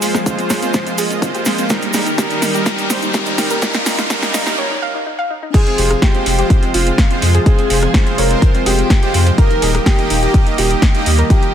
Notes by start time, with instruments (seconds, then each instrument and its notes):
Already playing: analog synth pad F3 G#3 A#3 G#4, riser
0.02 supersaw synth G#3 F4 C5, open hi-hat, shaker
0.15 synth pluck C4, cross-stick, snare, closed hi-hat, shaker
0.26 supersaw synth G#3 F4 C5, synth pluck C4, kick, closed hi-hat, shaker
0.39 synth pluck C4, closed hi-hat, shaker
0.50 supersaw synth G#3 F4 C5, synth pluck C#5, cross-stick, snare, open hi-hat, shaker
0.62 supersaw synth G#3 F4 C5, synth pluck C4, closed hi-hat, shaker
0.74 supersaw synth G#3 F4 C5, synth pluck C5, kick, snare, closed hi-hat, shaker
0.87 synth pluck C4, closed hi-hat, shaker
0.98 supersaw synth G#3 F4 D#5, synth pluck G#4, open hi-hat, shaker
1.11 synth pluck C4, closed hi-hat, shaker
1.22 supersaw synth G#3 F4 C5, synth pluck C4, kick, closed hi-hat, shaker
1.34 synth pluck G4, closed hi-hat, shaker
1.45 supersaw synth G#3 F4 C5, synth pluck C4, snare, open hi-hat, shaker
1.58 supersaw synth G#3 F4 C5, synth pluck C4, closed hi-hat, shaker
1.70 analog synth pad D#3 G3 G4, supersaw synth G3 D#4 A#4, synth pluck A#4, kick, snare, closed hi-hat, shaker
1.82 synth pluck D#4, closed hi-hat, shaker
1.93 supersaw synth G3 D#4 A#4, synth pluck G#4, snare, open hi-hat, shaker
2.06 synth pluck D#4, closed hi-hat, shaker
2.18 supersaw synth G3 D#4 A#4, synth pluck G4, kick, snare, closed hi-hat, shaker
2.30 synth pluck D#4, closed hi-hat, shaker
2.42 supersaw synth G3 D#4 A#4, synth pluck D#4, snare, open hi-hat, shaker
2.54 supersaw synth G3 D#4 A#4, synth pluck G4, closed hi-hat, shaker
2.66 supersaw synth G3 D#4 A#4, synth pluck D#4, kick, snare, closed hi-hat, shaker
2.78 synth pluck D#4, closed hi-hat, shaker
2.90 supersaw synth G3 D#4 C5, snare, open hi-hat, shaker
3.02 synth pluck D#4, closed hi-hat, shaker
3.14 supersaw synth G3 D#4 A#4, synth pluck G4, kick, snare, closed hi-hat, shaker
3.26 synth pluck D#4, closed hi-hat, shaker
3.38 supersaw synth G3 D#4 A#4, synth pluck D#4, snare, open hi-hat, shaker
3.50 supersaw synth G3 D#4 A#4, synth pluck A#4, closed hi-hat, shaker
3.62 supersaw synth G3 D#4 A#4, synth pluck D#4, analog synth pad F4, kick, snare, closed hi-hat, shaker
3.74 synth pluck D#4, snare, closed hi-hat, shaker
3.86 supersaw synth G3 D#4 A#4, snare, open hi-hat, shaker
3.98 synth pluck D#4, snare, closed hi-hat, shaker
4.10 supersaw synth G3 D#4 A#4, synth pluck D#4, kick, snare, closed hi-hat, shaker
4.23 synth pluck D#4, snare, closed hi-hat, shaker
4.34 supersaw synth G3 D#4 A#4, synth pluck D#5, snare, open hi-hat, shaker
4.46 supersaw synth G3 D#4 A#4, synth pluck D#4, snare, closed hi-hat, shaker
4.58 synth pluck C#5
4.71 synth pluck D#4
4.82 synth pluck F5
4.95 synth pluck D#4
5.06 synth pluck D#4
5.19 synth pluck F5
5.30 synth pluck D#4
5.43 synth pluck D#4
5.54 analog synth pad C3 F3 G#3 F4, supersaw synth G#3 F4 C5, violin section G#4, synth pluck G#4, grand piano G#4, kick, closed hi-hat, crash
5.67 synth pluck C4, closed hi-hat
5.78 sub bass F1, supersaw synth G#3 F4 C5, synth pluck G4, open hi-hat
5.91 synth pluck C4, cross-stick, closed hi-hat
6.02 supersaw synth G#3 F4 C5, synth pluck F4, grand piano G4, violin section G4, kick, snare, closed hi-hat
6.15 synth pluck C4, closed hi-hat
6.26 sub bass F1, supersaw synth G#3 F4 C5, synth pluck C4, open hi-hat
6.38 supersaw synth G#3 F4 C5, synth pluck G4, closed hi-hat
6.50 supersaw synth G#3 F4 C5, synth pluck C4, kick, closed hi-hat
6.63 synth pluck C4, closed hi-hat
6.74 sub bass F1, supersaw synth G#3 F4 C5, grand piano F4, violin section F4, open hi-hat
6.87 synth pluck C4, closed hi-hat
6.98 synth pluck F4, kick, snare, closed hi-hat
7.10 supersaw synth G#3 F4 C5, synth pluck C4, closed hi-hat
7.22 sub bass F2, supersaw synth G#3 F4 C5, synth pluck C4, open hi-hat
7.35 synth pluck G#4, closed hi-hat
7.46 supersaw synth G#3 F4 C5, synth pluck C4, violin section G#4, grand piano G#4, kick, closed hi-hat
7.59 synth pluck C4, closed hi-hat
7.70 sub bass F1, supersaw synth G#3 F4 C5, open hi-hat
7.83 synth pluck C4, cross-stick, closed hi-hat
7.94 supersaw synth G#3 F4 C5, synth pluck C4, kick, snare, closed hi-hat
8.07 synth pluck C4, closed hi-hat
8.18 sub bass F1, supersaw synth G#3 F4 C5, violin section A#4, grand piano A#4, synth pluck C#5, open hi-hat
8.31 supersaw synth G#3 F4 C5, synth pluck C4, closed hi-hat
8.42 supersaw synth G#3 F4 C5, synth pluck C5, kick, closed hi-hat
8.55 synth pluck C4, closed hi-hat
8.66 sub bass F1, supersaw synth G#3 F4 C5, violin section G4, grand piano G4, synth pluck G#4, open hi-hat
8.79 synth pluck C4, closed hi-hat
8.90 synth pluck C4, kick, snare, closed hi-hat
9.03 supersaw synth G#3 F4 C5, synth pluck G4, closed hi-hat
9.14 sub bass F2, supersaw synth G#3 F4 C5, synth pluck C4, open hi-hat
9.27 synth pluck C4, closed hi-hat
9.38 supersaw synth D#3 A#3 G4 D#5, analog synth pad D#3 G3 A#3 G4, violin section A#4, grand piano A#4, synth pluck A#4, kick, closed hi-hat
9.51 synth pluck D#4, closed hi-hat
9.62 sub bass D#1, supersaw synth D#3 A#3 G4 D#5, synth pluck G#4, open hi-hat
9.75 synth pluck D#4, cross-stick, closed hi-hat
9.86 supersaw synth D#3 A#3 G4 D#5, violin section G4, synth pluck G4, grand piano G4, kick, snare, closed hi-hat
9.99 synth pluck D#4, closed hi-hat
10.10 sub bass D#1, supersaw synth D#3 A#3 G4 D#5, synth pluck D#4, open hi-hat
10.22 supersaw synth D#3 A#3 G4 D#5, synth pluck G4, closed hi-hat
10.34 supersaw synth D#3 A#3 G4 D#5, synth pluck D#4, kick, closed hi-hat
10.47 synth pluck D#4, closed hi-hat
10.58 sub bass D#1, supersaw synth D#3 A#3 G4 D#5, violin section G4, grand piano G4, open hi-hat
10.71 synth pluck D#4, closed hi-hat
10.82 synth pluck G4, kick, snare, closed hi-hat
10.95 supersaw synth D#3 A#3 G4 D#5, synth pluck D#4, closed hi-hat
11.06 sub bass D#2, supersaw synth D#3 A#3 G4 D#5, synth pluck D#4, open hi-hat
11.19 synth pluck A#4, closed hi-hat
11.30 supersaw synth D#3 A#3 G4 D#5, synth pluck D#4, analog synth pad F4, grand piano G4, violin section G4, kick, closed hi-hat
11.43 synth pluck D#4, closed hi-hat